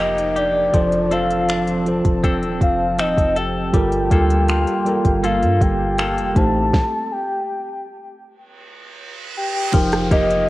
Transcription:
Already playing: F1 F3 D#4 G4 A#4 C5 D#5, downlifter
0.00 A#3 D#4 G4, finger snap
0.18 closed hi-hat
0.36 G4 D5, closed hi-hat
0.73 F1 F3 C4 F4 A4 C5 A5, kick, closed hi-hat
0.92 closed hi-hat
1.10 F3 C4 D4 F4 A4 C5 F5, closed hi-hat
1.30 closed hi-hat
1.49 D4, finger snap, closed hi-hat
1.67 closed hi-hat
1.85 F3 F4 A4 C5, closed hi-hat
2.05 F1, kick, closed hi-hat
2.24 C4 D4 A4, kick, closed hi-hat
2.43 D#1, closed hi-hat
2.61 F1 F5, kick, closed hi-hat
2.98 D#1 C4 A4 D#5, finger snap, closed hi-hat
3.17 F1, kick, closed hi-hat
3.36 A4 G5, closed hi-hat
3.72 G1 G3 A#3 F4 A4 A#4, kick, closed hi-hat
3.92 closed hi-hat
4.10 D2 G3 A#3 F4 A4 A#4, kick, closed hi-hat
4.30 closed hi-hat
4.48 F4, finger snap, closed hi-hat
4.67 closed hi-hat
4.85 G3 F4 A4 A#4, closed hi-hat
5.05 G1, kick, closed hi-hat
5.24 A#3 F4 A4 F5, closed hi-hat
5.42 G2, closed hi-hat
5.61 G1 G5, kick, closed hi-hat
5.98 A#3 F4 A4, finger snap, closed hi-hat
6.18 F1, closed hi-hat
6.35 A1 A2 A3 C4 D#4 G4 C5 A5, kick, closed hi-hat
6.73 kick, snare
7.12 G5
8.23 reverse cymbal
9.37 G5
9.72 F1 F3 D#4 G4 A#4, kick, closed hi-hat, downlifter
9.92 cross-stick, closed hi-hat
10.10 F1 F3 A#3 D#4 G4 A#4 D#5, kick, closed hi-hat
10.30 closed hi-hat

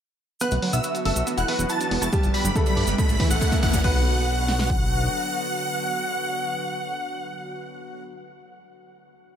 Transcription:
0.40 D3 F#3 B3 F#4 B4 F#5 F#6, closed hi-hat, riser, cabasa
0.51 B1 A3, closed hi-hat, cabasa
0.62 D3 F#3 B3 F#4, open hi-hat
0.73 B1 B3 E5 E6, closed hi-hat, cabasa
0.84 D3 F#3 B3 F#4 B4, closed hi-hat, cabasa
0.95 B3, closed hi-hat, cabasa
1.05 F#1 D3 F#3 A3 B3 F#4 A4 E5 E6, open hi-hat
1.16 B1 A3, closed hi-hat, cabasa
1.27 E3 F#3 B3 F#4, closed hi-hat, cabasa
1.38 E1 E4 F#5 F#6, closed hi-hat, cabasa
1.48 E3 F#3 B3 F#4 B4 E5, open hi-hat
1.59 E1 E4, closed hi-hat, cabasa
1.69 E3 F#3 B3 E4 F#4 A5 A6, closed hi-hat, cabasa
1.81 D4, closed hi-hat, cabasa
1.91 E1 E3 F#3 B3 F#4, open hi-hat
2.02 E1 E4 A5 A6, closed hi-hat, cabasa
2.12 D3 G3 B3 G4, kick, closed hi-hat, cabasa
2.23 G1 G3, closed hi-hat, cabasa
2.34 D3 G3 B3 G4 B5 B6, open hi-hat
2.45 G1 F#3, closed hi-hat, cabasa
2.55 D3 G3 A3 B3 G4 A4, kick, closed hi-hat, cabasa
2.66 G3 B5 B6, closed hi-hat, cabasa
2.77 G2 D3 G3 B3 G4, open hi-hat
2.87 G1 G3, closed hi-hat, cabasa
2.98 C#3 E3 A3 E4 B5 B6, kick, closed hi-hat, cabasa
3.09 A1 G3, closed hi-hat, cabasa
3.20 C#3 E3 A3 E4, kick, open hi-hat
3.30 A1 A3 F#5 F#6, closed hi-hat, cabasa
3.41 C#3 E3 A3 E4 A4, kick, closed hi-hat, cabasa
3.52 A3, kick, closed hi-hat, cabasa
3.63 A1 C#3 E3 A3 E4 F#5 F#6, kick, open hi-hat
3.73 A1 G3, kick, closed hi-hat, cabasa
3.84 B1 D3 F#3 B3 F#4 B4 F#5 F#6, kick, crash
4.48 snare
4.59 snare
4.70 kick

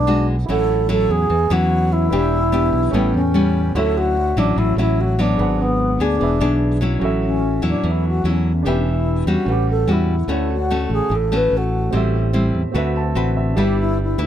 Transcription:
Already playing: B1 B2 D4 E4 G#4 D5 F#5
0.07 G#3 D4 F#4
0.46 A1 A2 F#3 A3 C#4 E4 C#5
0.50 E4 A4 F#5
0.89 F#3 C#4 E4 A4
1.09 E2 G#4
1.30 E2 E3
1.50 E2 F#3 C#4 E4 F#4
1.92 E4
2.09 E1 E3 B3 D4 E4 G4 B4 D5
2.15 G5
2.52 B3 D4 G4
2.73 B1
2.91 A1 A2 G3 B3 C#4 A4 B4
2.97 G5
3.14 E2 C#4
3.34 G3 B3 C#4
3.75 D2 D3 F#3 C#4 E4 F#4 A4 C#5 E5
3.97 F#4
4.36 A1 F#3 C#4 D4 E4
4.56 A1 A2 E4
4.76 A1 F#3 C#4 E4 F#4 C#5 E5
5.00 F#4
5.19 F#3 B3 D4
5.35 G#1 D4 G#4 B4
5.39 G#2 F#5
5.61 B3
5.99 D2 B3 D4 G#4
6.17 E1 E3 D4 G#4
6.22 B4 E5
6.40 B1 B3 D4 G#4
6.81 F#3 C#4 E4
6.99 A1 A2 C#4 F#4
7.03 A4 E5
7.25 C#4
7.62 E2 F#3 C#4 E4
7.68 D4
7.83 E2 E3
7.90 E4
8.08 F#4
8.24 E2 F#3 C#4 E4
8.30 C#4
8.63 E1 E3 B3 D4 G4 B4
8.68 E5
8.89 E4
9.26 E2 G3 C#4 F#4
9.45 A1 A2 C#4 B4
9.50 G4 F#5
9.70 A4
9.87 E2 G3 C#4 E4 F#4
10.28 D2 D3 A3 C#4 F#4 A4 C#5
10.32 F#5
10.53 F#4
10.71 A3 C#4 F#4
10.90 A1 G#4
11.10 A1 A2
11.15 A4
11.32 A3 C#4 F#4
11.36 B4
11.52 A1
11.57 F#4
11.91 A1 A2 G3 C4 E4 G4
11.95 A4 E5
12.33 G3 C4 E4
12.54 E2
12.72 D2 D3 C4 F#4 B4
12.78 E5
12.96 A5
13.15 A1 C4 F#4 B4 F#5
13.37 E5
13.54 G1 G3 D4 E4 G4 B4
13.59 G4 E5
13.80 E4
14.03 E4
14.18 D2 D4 E4 B4

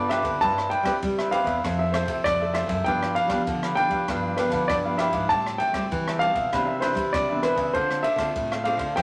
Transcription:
Already playing: G2 D3 B3 F4 A4
0.09 F4 G4 B4 D5 E5, cross-stick, ride
0.22 D3 C4 G4 B4 D5, kick, ride
0.41 G2 G3 G4 B4 C5 E5 A5, kick, ride
0.58 cross-stick
0.70 G4 B4 C5 E5 G5, ride
0.83 G3 C4 E4 G4 B4 C5 E5, kick, cross-stick, ride
1.03 G3, kick, ride
1.18 B4 C5 E5, cross-stick
1.31 C4 E4 G4 B4 C5 E5 F5, ride
1.44 E2 B4 C5 E5, kick, ride
1.64 F2 F3 C4 E4 F4 A4 C5 E5, kick, cross-stick, ride
1.79 E5
1.92 C4 E4 F4 A4 C5 E5, cross-stick, ride
2.05 C3 C5 E5, kick, ride
2.09 A4
2.24 F2 C3 D5, kick, cross-stick, ride
2.41 C4 E4 A4 C5 E5
2.54 F4 A4 C5 E5, cross-stick, ride
2.66 F#2 C5 E5, kick, ride
2.71 A4
2.84 G2 F3 B3 D4 E4 G4 B4 F5 G5, kick, ride
3.03 cross-stick
3.15 D4 G4 B4 F5, ride
3.28 F3 G3 B3 D4 G4 B4 F5, kick, cross-stick, ride
3.47 D3, kick, ride
3.62 G4 B4 F5, cross-stick
3.75 F3 B3 D4 E4 G4 B4 F5 G5, ride
3.88 G3 B4 F5, kick, ride
3.93 G4
4.08 G2 F3 B3 D4 E4 G4 B4 F5, kick, cross-stick, ride
4.37 F3 B3 D4 E4 G4 B4 F5, cross-stick, ride
4.49 D3 B4 F5, kick, ride
4.54 G4
4.68 G2 D3 D5, kick, cross-stick, ride
4.85 F3 B3 E4 G4 B4 F5
4.98 D4 G4 B4 E5 F5, cross-stick, ride
5.11 G#2 B4 F5, kick, ride
5.15 G4
5.29 A2 G3 C4 E4 G4 C5 E5 A5, kick, ride
5.46 cross-stick
5.58 G4 C5 E5 G5 A5, ride
5.72 G3 A3 C4 E4 G4 C5 E5 A5, kick, cross-stick, ride
5.91 E3, kick, ride
6.07 C5 E5 A5, cross-stick
6.19 G3 C4 E4 G4 C5 E5 F5 A5, ride
6.33 B2 C5 E5 A5, kick, ride
6.52 C3 E3 B3 D4 E4 B4 C5 E5, kick, cross-stick, ride
6.67 E5
6.80 E3 D4 E4 B4 C5 E5, cross-stick, ride
6.94 G3 B4 C5 E5, kick, ride
7.13 G2 C3 D5, kick, cross-stick, ride
7.29 E3 B3 D4 B4 C5 E5
7.43 E4 B4 C5 E5, cross-stick, ride
7.55 C#3 B4 C5 E5, kick, ride
7.73 D3 C4 D4 F4 A4 C5 F5, kick, ride
7.91 cross-stick
8.03 D4 A4 C5 E5 F5, ride
8.16 D3 C4 D4 F4 A4 C5 F5, kick, cross-stick, ride
8.20 A4
8.36 A2, kick, ride
8.51 A4 C5 F5, cross-stick
8.64 C4 D4 F4 A4 C5 F5, ride
8.77 D3 A4 C5 F5, kick, ride
8.96 F3 C4 E4 F4 A4 C5 E5 G5, kick, cross-stick, ride

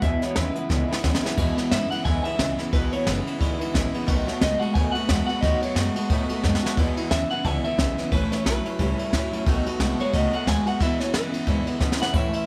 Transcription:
0.02 E2 B2 E3 G#3 B3 E4 E5, kick, closed hi-hat
0.21 E2 B2 E3 G#3 B3 E4 C#5, muted upright bass stroke, snare, closed hi-hat
0.35 D#2 E2 C#3 E3 G#3 B3 E4 B4, snare, closed hi-hat
0.54 E2 C#3 E3 G#3 B3 E4, closed hi-hat
0.69 C#2 E2 B2 D3 E3 G#3 B3 E4, kick, snare
0.88 E2 D3 E3 G#3 B3 E4, muted upright bass stroke
0.92 snare
1.03 D#2 E2 C#3 E3 G#3 B3 E4, kick, snare
1.15 snare
1.22 E2 C#3 E3 G#3 B3 E4, muted upright bass stroke, snare
1.37 E2 B2 E3 G#3 B3 E4, kick, crash
1.56 E2 B2 E3 G#3 B3 E4, snare, ride
1.70 E2 G#2 C#3 E3 G#3 B3 E4 E5, snare, ride
1.90 E2 C#3 E3 G#3 B3 E4 F#5, muted upright bass stroke, ride
2.04 E2 B2 D3 E3 G#3 B3 E4 G#5, kick, ride
2.23 E2 D3 E3 G#3 B3 E4 E5, ride
2.38 C#2 E2 C#3 E3 G#3 B3 E4, kick, snare, ride
2.58 E2 C#3 E3 G#3 B3 E4, snare, ride
2.72 B1 E2 B2 E3 G#3 B3 E4 B4, kick, ride
2.92 E2 B2 E3 G#3 B3 E4 C#5, ride
3.05 F#1 E2 C#3 E3 G#3 B3 E4 B4, snare, ride
3.25 E2 C#3 E3 G#3 B3 E4, ride
3.39 G#1 E2 B2 D3 E3 G#3 B3 E4, kick, ride
3.59 E2 D3 E3 G#3 B3 E4, muted upright bass stroke, ride
3.73 A1 E2 C#3 E3 G#3 B3 E4, kick, snare, ride
3.92 E2 C#3 E3 G#3 B3 E4, muted upright bass stroke, ride
4.06 B1 B2 D#3 F#3 A3 B3 F#4, kick, snare, ride
4.26 B2 F#3 A3 B3 F#4, muted upright bass stroke, snare, ride
4.40 C#2 B2 D#3 G#3 A3 B3 F#4 D#5, snare, ride
4.60 B2 G#3 B3 F#4 F#5, muted upright bass stroke, ride
4.64 A3
4.74 D#2 B2 D#3 A3 B3 F#4 G#5, kick, ride
4.92 B2 A3 F#4 F#5, muted upright bass stroke, ride
4.96 A3 B3
5.08 E2 B2 D#3 G#3 A3 B3 F#4, kick, snare, ride
5.26 B2 G#3 B3 F#4 F#5, ride
5.31 A3
5.41 D#2 B2 D#3 F#3 A3 B3 F#4 D#5, kick, snare, ride
5.61 B2 F#3 A3 B3 F#4 C#5, ride
5.75 F#2 B2 D#3 G#3 A3 B3 F#4 D#5, snare, ride
5.95 B2 G#3 B3 F#4, muted upright bass stroke, ride
5.99 A3
6.10 A2 B2 D#3 A3 B3 F#4, kick, ride
6.29 B2 A3 B3 F#4, muted upright bass stroke, ride
6.33 A3
6.43 F#2 B2 D#3 G#3 A3 B3 F#4, kick, snare
6.55 snare
6.63 B2 G#3 A3 B3 F#4, snare
6.77 E2 B2 E3 G#3 B3 E4, kick, ride
6.97 E2 B2 E3 G#3 B3 E4, ride
7.10 D#2 E2 C#3 E3 G#3 B3 E5, snare, ride
7.14 E4
7.30 E2 C#3 E3 G#3 B3 E4 F#5, ride
7.44 C#2 E2 B2 D3 E3 G#3 B3 E4 G#5, kick, ride
7.64 E2 D3 E3 G#3 B3 E4 E5, muted upright bass stroke, ride
7.77 B1 E2 C#3 E3 G#3 B3 E4, kick, snare, ride
7.97 E2 C#3 E3 G#3 B3 E4, snare, ride
8.12 A1 A2 E3 A3 C#4 E4 B4, kick, ride
8.31 A2 E3 A3 C#4 E4 C#5, muted upright bass stroke, snare, ride
8.45 B1 A2 E3 F#3 A3 C#4 E4 B4, snare, ride
8.64 A2 F#3 A3 C#4 E4, muted upright bass stroke, ride
8.79 C#2 A2 E3 G3 A3 C#4 E4, kick, ride
8.98 A2 G3 A3 C#4 E4, ride
9.12 A1 A2 E3 F#3 A3 C#4 E4, kick, snare, ride
9.32 A2 F#3 A3 C#4 E4, muted upright bass stroke, ride
9.46 B1 B2 D#3 F#3 A3 B3 F#4, kick, ride
9.66 B2 F#3 A3 B3 F#4, ride
9.79 C2 B2 D#3 G#3 A3 B3 F#4, snare, ride
9.98 B2 G#3 A3 B3 F#4 C#5, muted upright bass stroke, ride
10.13 C#2 B2 D#3 A3 B3 F#4 D#5, kick, snare, ride
10.32 B2 A3 B3 F#4 F#5, ride
10.46 D#2 B2 D#3 G#3 A3 B3 F#4 G#5, kick, snare, ride
10.65 B2 G#3 A3 B3 F#4 F#5, muted upright bass stroke, ride
10.80 E2 B2 E3 G#3 B3 E4 E5, kick, snare, ride
10.99 E2 B2 E3 G#3 B3 E4 C#5, muted upright bass stroke, snare, ride
11.13 E2 F#2 C#3 E3 G#3 B3 E4 B4, snare, ride
11.32 E2 C#3 E3 G#3 B3 E4, muted upright bass stroke, ride
11.47 E2 G#2 B2 D3 E3 G#3 B3 E4, kick, ride
11.66 E2 D3 E3 G#3 B3 E4, muted upright bass stroke, ride
11.79 E2 B2 C#3 E3 G#3 B3 E4, kick, snare
11.92 snare
11.99 E2 C#3 E3 G#3 B3 E4 F#5, muted upright bass stroke, snare
12.13 A2 E3 A3 C#4 E4 E5, kick, crash
12.32 A3 C#4 E4 E5, muted upright bass stroke, ride

